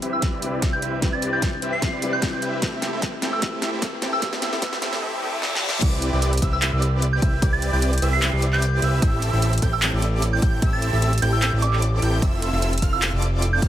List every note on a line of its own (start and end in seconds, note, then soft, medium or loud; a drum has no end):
0.00 2.59 C2 medium
0.00 2.59 C3 medium
0.00 0.39 G3 medium
0.00 0.40 C4 medium
0.00 0.30 C4 medium
0.00 0.40 D4 medium
0.00 2.59 D4 medium
0.00 0.41 E4 medium
0.00 0.30 E4 medium
0.00 0.30 G4 medium
0.00 0.41 B4 medium
0.00 4.98 B4 medium
0.00 0.30 B4 medium
0.00 2.59 E5 medium
0.00 0.30 E5 loud
0.00 closed hi-hat medium
0.00 riser medium
0.13 0.21 E6 medium
0.22 kick loud
0.22 snare soft
0.22 closed hi-hat medium
0.33 0.80 C4 medium
0.33 0.80 E4 medium
0.33 0.80 G4 medium
0.33 0.80 B4 medium
0.33 0.80 D5 loud
0.40 0.99 G3 medium
0.40 0.99 C4 medium
0.40 1.00 D4 medium
0.40 1.00 E4 medium
0.40 closed hi-hat medium
0.44 1.01 B4 medium
0.62 kick medium
0.62 snare medium
0.62 closed hi-hat medium
0.73 0.81 G6 medium
0.82 1.00 C4 medium
0.82 1.00 E4 medium
0.82 1.00 G4 medium
0.82 1.00 B4 medium
0.82 1.00 E5 medium
0.82 closed hi-hat medium
1.00 1.99 G3 medium
1.00 1.99 C4 medium
1.00 1.30 C4 loud
1.00 2.00 D4 medium
1.00 1.30 E4 medium
1.00 2.00 E4 medium
1.00 1.30 G4 medium
1.00 1.30 B4 medium
1.00 1.30 D5 loud
1.00 kick medium
1.00 snare medium
1.00 closed hi-hat medium
1.04 2.01 B4 medium
1.13 1.21 A6 medium
1.22 closed hi-hat medium
1.33 1.52 C4 medium
1.33 1.52 E4 medium
1.33 1.52 G4 medium
1.33 1.52 B4 medium
1.33 1.52 D5 loud
1.33 1.41 G6 medium
1.42 kick loud
1.42 snare medium
1.42 closed hi-hat medium
1.62 1.90 C4 medium
1.62 1.90 E4 medium
1.62 1.90 G4 medium
1.62 1.90 B4 medium
1.62 1.90 E5 loud
1.62 closed hi-hat medium
1.73 1.81 C7 medium
1.82 kick loud
1.82 snare medium
1.82 closed hi-hat medium
1.93 2.40 C4 medium
1.93 2.40 E4 medium
1.93 2.40 G4 medium
1.93 2.40 B4 medium
1.93 2.40 D5 loud
2.01 2.20 G3 medium
2.01 2.20 C4 medium
2.01 2.20 D4 medium
2.01 2.20 E4 medium
2.01 2.21 B4 medium
2.01 closed hi-hat medium
2.13 2.53 G6 medium
2.21 2.60 G3 loud
2.21 2.60 C4 medium
2.21 2.60 D4 medium
2.21 2.60 E4 medium
2.21 2.61 B4 loud
2.21 kick loud
2.21 snare medium
2.21 closed hi-hat medium
2.42 2.60 C4 medium
2.42 2.60 E4 medium
2.42 2.60 G4 medium
2.42 2.60 B4 medium
2.42 2.60 E5 medium
2.42 closed hi-hat medium
2.60 5.00 A2 medium
2.60 5.00 E3 medium
2.60 3.39 A3 medium
2.60 3.40 C4 medium
2.60 5.00 C4 medium
2.60 2.90 C4 medium
2.60 2.90 E4 medium
2.60 3.41 E4 medium
2.60 2.90 G4 medium
2.60 3.41 G4 medium
2.60 2.90 A4 medium
2.60 2.90 E5 loud
2.60 5.00 G5 medium
2.60 kick loud
2.60 snare medium
2.60 closed hi-hat medium
2.64 3.42 B4 medium
2.82 snare medium
2.82 closed hi-hat medium
2.93 3.12 C4 medium
2.93 3.12 E4 medium
2.93 3.12 G4 medium
2.93 3.12 A4 medium
2.93 3.12 E5 loud
3.02 kick loud
3.02 snare medium
3.02 closed hi-hat medium
3.22 3.41 C4 medium
3.22 3.41 E4 medium
3.22 3.41 G4 medium
3.22 3.41 A4 medium
3.22 3.41 G5 loud
3.22 snare medium
3.22 closed hi-hat medium
3.33 3.41 E6 medium
3.40 4.19 A3 medium
3.40 4.20 C4 medium
3.40 3.70 C4 medium
3.40 3.70 E4 medium
3.40 4.21 E4 medium
3.40 3.70 G4 medium
3.40 4.21 G4 medium
3.40 3.70 A4 medium
3.40 3.70 E5 loud
3.40 kick loud
3.40 snare medium
3.40 closed hi-hat medium
3.44 4.22 B4 medium
3.62 snare medium
3.62 closed hi-hat medium
3.73 3.92 C4 medium
3.73 3.92 E4 medium
3.73 3.92 G4 medium
3.73 3.92 A4 medium
3.73 3.92 E5 loud
3.82 kick loud
3.82 snare medium
3.82 closed hi-hat medium
4.02 4.21 C4 medium
4.02 4.21 E4 medium
4.02 4.21 G4 medium
4.02 4.21 A4 medium
4.02 4.21 G5 loud
4.02 snare medium
4.02 closed hi-hat medium
4.13 4.21 E6 medium
4.20 4.59 A3 medium
4.20 4.60 C4 medium
4.20 4.50 C4 loud
4.20 4.50 E4 medium
4.20 4.61 E4 medium
4.20 4.50 G4 medium
4.20 4.61 G4 medium
4.20 4.50 A4 medium
4.20 4.50 E5 loud
4.20 4.32 E6 medium
4.20 kick loud
4.20 snare medium
4.20 closed hi-hat medium
4.24 4.62 B4 medium
4.33 snare medium
4.42 snare medium
4.42 closed hi-hat medium
4.53 4.61 C4 medium
4.53 4.61 E4 medium
4.53 4.61 G4 medium
4.53 4.61 A4 medium
4.53 4.61 E5 loud
4.53 snare medium
4.60 5.00 A3 medium
4.60 5.00 C4 medium
4.60 4.90 C4 loud
4.60 4.90 E4 medium
4.60 5.01 E4 medium
4.60 4.90 G4 medium
4.60 5.01 G4 medium
4.60 4.90 A4 medium
4.60 4.90 E5 loud
4.60 4.72 E6 medium
4.60 kick loud
4.60 snare loud
4.60 closed hi-hat medium
4.64 5.02 B4 medium
4.73 snare medium
4.82 snare loud
4.82 closed hi-hat medium
4.93 5.01 C4 medium
4.93 5.01 E4 medium
4.93 5.01 G4 medium
4.93 5.01 A4 medium
4.93 5.01 E5 loud
4.93 snare medium
5.02 5.21 C4 loud
5.02 5.21 E4 medium
5.02 5.21 G4 medium
5.02 5.21 A4 medium
5.02 5.21 E5 loud
5.02 reverse cymbal medium
5.22 5.41 C4 loud
5.22 5.41 E4 medium
5.22 5.41 G4 medium
5.22 5.41 A4 medium
5.22 5.41 E5 loud
5.42 5.61 C4 loud
5.42 5.61 E4 medium
5.42 5.61 G4 medium
5.42 5.61 A4 medium
5.42 5.61 E5 loud
5.42 snare medium
5.55 snare medium
5.62 5.81 C4 loud
5.62 5.81 E4 medium
5.62 5.81 G4 loud
5.62 5.81 A4 loud
5.62 5.81 E5 loud
5.69 snare loud
5.82 6.11 C2 loud
5.82 6.10 C4 loud
5.82 6.10 E4 medium
5.82 6.10 G4 medium
5.82 6.10 B4 loud
5.82 6.10 D5 loud
5.82 6.10 D6 loud
5.82 kick loud
5.82 closed hi-hat medium
5.82 crash loud
6.02 closed hi-hat medium
6.13 6.40 C2 loud
6.13 6.32 C4 loud
6.13 6.32 E4 medium
6.13 6.32 G4 medium
6.13 6.32 B4 medium
6.13 6.32 D5 loud
6.13 6.32 D6 loud
6.22 closed hi-hat medium
6.33 closed hi-hat medium
6.37 closed hi-hat medium
6.42 6.71 C2 loud
6.42 6.70 C4 loud
6.42 6.70 E4 medium
6.42 6.70 G4 medium
6.42 6.70 B4 medium
6.42 6.70 E5 loud
6.42 6.70 E6 loud
6.42 kick medium
6.42 closed hi-hat medium
6.53 6.61 E6 medium
6.62 clap loud
6.62 closed hi-hat medium
6.73 7.20 C2 loud
6.73 7.20 C4 medium
6.73 7.20 E4 medium
6.73 7.20 G4 medium
6.73 7.20 B4 medium
6.73 7.20 D5 loud
6.73 7.20 D6 loud
6.82 closed hi-hat medium
7.02 closed hi-hat medium
7.13 7.21 G6 medium
7.22 7.40 C2 loud
7.22 7.40 C4 medium
7.22 7.40 E4 medium
7.22 7.40 G4 medium
7.22 7.40 B4 medium
7.22 7.40 E5 medium
7.22 7.40 E6 medium
7.22 kick loud
7.22 closed hi-hat medium
7.42 7.71 C2 medium
7.42 7.70 C4 loud
7.42 7.70 E4 medium
7.42 7.70 G4 medium
7.42 7.70 B4 loud
7.42 7.70 D5 loud
7.42 7.70 D6 loud
7.42 kick loud
7.42 closed hi-hat medium
7.53 7.61 A6 medium
7.62 closed hi-hat medium
7.73 8.00 C2 medium
7.73 7.92 C4 loud
7.73 7.92 E4 medium
7.73 7.92 G4 medium
7.73 7.92 B4 medium
7.73 7.92 D5 loud
7.73 7.92 D6 loud
7.73 7.81 G6 medium
7.82 closed hi-hat medium
7.93 closed hi-hat medium
7.98 closed hi-hat medium
8.02 8.31 C2 loud
8.02 8.30 C4 loud
8.02 8.30 E4 medium
8.02 8.30 G4 medium
8.02 8.30 B4 medium
8.02 8.30 E5 loud
8.02 8.30 E6 loud
8.02 closed hi-hat medium
8.13 8.22 C7 medium
8.22 clap loud
8.22 closed hi-hat medium
8.33 8.80 C2 loud
8.33 8.80 C4 medium
8.33 8.80 E4 medium
8.33 8.80 G4 medium
8.33 8.80 B4 medium
8.33 8.80 D5 loud
8.33 8.80 D6 loud
8.42 closed hi-hat medium
8.53 8.93 G6 loud
8.53 clap soft
8.62 closed hi-hat medium
8.82 9.00 C2 loud
8.82 9.00 C4 medium
8.82 9.00 E4 medium
8.82 9.00 G4 medium
8.82 9.00 B4 medium
8.82 9.00 E5 medium
8.82 9.00 E6 medium
8.82 closed hi-hat medium
9.02 9.31 A1 loud
9.02 9.30 C4 loud
9.02 9.30 E4 medium
9.02 9.30 G4 loud
9.02 9.30 A4 medium
9.02 9.30 E5 loud
9.02 9.30 E6 loud
9.02 kick loud
9.02 closed hi-hat medium
9.22 closed hi-hat medium
9.33 9.60 A1 loud
9.33 9.52 C4 loud
9.33 9.52 E4 medium
9.33 9.52 G4 medium
9.33 9.52 A4 medium
9.33 9.52 E5 loud
9.33 9.52 E6 loud
9.42 closed hi-hat medium
9.53 closed hi-hat soft
9.58 closed hi-hat medium
9.62 9.91 A1 loud
9.62 9.90 C4 loud
9.62 9.90 E4 medium
9.62 9.90 G4 medium
9.62 9.90 A4 medium
9.62 9.90 G5 loud
9.62 9.90 G6 loud
9.62 kick medium
9.62 closed hi-hat medium
9.73 9.82 E6 medium
9.82 clap loud
9.82 closed hi-hat medium
9.93 10.40 A1 loud
9.93 10.40 C4 medium
9.93 10.40 E4 medium
9.93 10.40 G4 medium
9.93 10.40 A4 medium
9.93 10.40 D5 loud
9.93 10.40 D6 loud
10.02 closed hi-hat medium
10.22 closed hi-hat medium
10.33 10.42 G6 medium
10.42 10.60 A1 loud
10.42 10.60 C4 medium
10.42 10.60 E4 medium
10.42 10.60 G4 medium
10.42 10.60 A4 medium
10.42 10.60 G5 medium
10.42 10.60 G6 medium
10.42 kick loud
10.42 closed hi-hat medium
10.62 10.91 A1 loud
10.62 10.90 C4 loud
10.62 10.90 E4 loud
10.62 10.90 G4 loud
10.62 10.90 A4 medium
10.62 10.90 E5 loud
10.62 10.90 E6 loud
10.62 kick loud
10.62 closed hi-hat medium
10.73 10.81 A6 medium
10.82 closed hi-hat medium
10.93 11.20 A1 medium
10.93 11.12 C4 medium
10.93 11.12 E4 medium
10.93 11.12 G4 medium
10.93 11.12 A4 medium
10.93 11.12 E5 loud
10.93 11.12 E6 loud
11.02 closed hi-hat medium
11.13 closed hi-hat soft
11.18 closed hi-hat medium
11.22 11.51 A1 loud
11.22 11.50 C4 loud
11.22 11.50 E4 medium
11.22 11.50 G4 medium
11.22 11.50 A4 medium
11.22 11.50 G5 loud
11.22 11.31 G6 medium
11.22 11.50 G6 loud
11.22 closed hi-hat medium
11.33 11.39 E6 medium
11.42 11.49 E6 medium
11.42 clap loud
11.42 closed hi-hat medium
11.53 12.00 A1 loud
11.53 12.00 C4 medium
11.53 12.00 E4 medium
11.53 12.00 G4 medium
11.53 12.00 A4 medium
11.53 12.00 D5 loud
11.53 12.00 D6 loud
11.62 11.93 D6 medium
11.62 closed hi-hat medium
11.73 clap soft
11.82 closed hi-hat medium
12.02 12.24 A1 loud
12.02 12.20 C4 medium
12.02 12.20 E4 medium
12.02 12.20 G4 medium
12.02 12.20 A4 medium
12.02 12.20 G5 medium
12.02 12.20 G6 medium
12.02 closed hi-hat medium
12.22 12.51 F1 loud
12.22 12.50 C4 loud
12.22 12.50 E4 loud
12.22 12.50 F4 medium
12.22 12.50 A4 medium
12.22 12.50 E5 loud
12.22 12.50 E6 loud
12.22 kick loud
12.22 closed hi-hat medium
12.42 closed hi-hat medium
12.53 12.80 F1 loud
12.53 12.72 C4 loud
12.53 12.72 E4 medium
12.53 12.72 F4 medium
12.53 12.72 A4 medium
12.53 12.72 E5 loud
12.53 12.72 E6 loud
12.62 closed hi-hat medium
12.73 closed hi-hat soft
12.78 closed hi-hat medium
12.82 13.11 F1 loud
12.82 13.10 C4 loud
12.82 13.10 E4 medium
12.82 13.10 F4 medium
12.82 13.10 A4 medium
12.82 13.10 F5 loud
12.82 13.10 F6 loud
12.82 kick medium
12.82 closed hi-hat medium
12.93 13.01 E6 medium
13.02 clap loud
13.02 closed hi-hat medium
13.13 13.60 F1 loud
13.13 13.60 C4 medium
13.13 13.60 E4 medium
13.13 13.60 F4 medium
13.13 13.60 A4 medium
13.13 13.60 D5 loud
13.13 13.60 D6 loud
13.22 closed hi-hat medium
13.42 closed hi-hat medium
13.53 13.61 G6 medium
13.62 13.68 F1 medium
13.62 13.68 C4 medium
13.62 13.68 E4 medium
13.62 13.68 F4 medium
13.62 13.68 A4 medium
13.62 13.68 F5 medium
13.62 13.68 F6 medium
13.62 kick loud
13.62 closed hi-hat medium